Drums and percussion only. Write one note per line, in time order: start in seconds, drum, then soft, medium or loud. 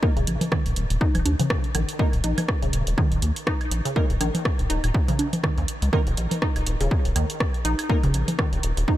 0.03 kick loud
0.17 closed hi-hat soft
0.27 closed hi-hat medium
0.41 closed hi-hat medium
0.41 low conga loud
0.52 kick loud
0.52 cross-stick medium
0.52 claves medium
0.66 closed hi-hat soft
0.76 closed hi-hat loud
0.90 closed hi-hat medium
1.01 kick loud
1.15 closed hi-hat soft
1.15 low conga medium
1.15 claves medium
1.26 closed hi-hat loud
1.26 high conga medium
1.40 closed hi-hat medium
1.40 low conga medium
1.50 kick loud
1.50 cross-stick loud
1.64 closed hi-hat soft
1.75 closed hi-hat loud
1.75 claves medium
1.89 closed hi-hat medium
1.99 kick loud
2.13 closed hi-hat soft
2.24 closed hi-hat loud
2.38 closed hi-hat soft
2.38 low conga medium
2.38 claves medium
2.48 kick loud
2.48 cross-stick medium
2.62 closed hi-hat soft
2.73 closed hi-hat loud
2.87 closed hi-hat medium
2.98 kick loud
2.98 claves medium
3.12 closed hi-hat soft
3.22 closed hi-hat loud
3.36 closed hi-hat medium
3.47 kick loud
3.47 cross-stick loud
3.61 closed hi-hat soft
3.61 claves medium
3.71 closed hi-hat loud
3.85 closed hi-hat medium
3.96 kick loud
4.10 closed hi-hat soft
4.21 closed hi-hat loud
4.21 high conga medium
4.21 claves medium
4.35 closed hi-hat soft
4.35 low conga medium
4.45 kick loud
4.45 cross-stick medium
4.59 closed hi-hat soft
4.70 closed hi-hat loud
4.84 closed hi-hat soft
4.84 claves medium
4.94 kick loud
5.08 closed hi-hat soft
5.08 low conga medium
5.19 closed hi-hat loud
5.19 high conga medium
5.33 closed hi-hat medium
5.33 low conga medium
5.44 kick loud
5.44 cross-stick medium
5.44 claves medium
5.58 closed hi-hat soft
5.68 closed hi-hat loud
5.82 closed hi-hat medium
5.93 kick loud
5.93 claves medium
6.07 closed hi-hat soft
6.17 closed hi-hat medium
6.31 closed hi-hat medium
6.31 low conga medium
6.42 kick loud
6.42 cross-stick medium
6.56 closed hi-hat soft
6.56 claves medium
6.67 closed hi-hat loud
6.81 closed hi-hat soft
6.91 kick loud
7.05 closed hi-hat soft
7.16 closed hi-hat loud
7.16 claves medium
7.30 closed hi-hat medium
7.40 kick loud
7.40 cross-stick medium
7.54 closed hi-hat soft
7.65 closed hi-hat medium
7.79 closed hi-hat medium
7.79 claves medium
7.90 kick loud
8.04 closed hi-hat soft
8.14 closed hi-hat medium
8.28 closed hi-hat medium
8.28 low conga medium
8.39 kick loud
8.39 cross-stick medium
8.39 claves medium
8.53 closed hi-hat soft
8.63 closed hi-hat medium
8.77 closed hi-hat medium
8.88 kick loud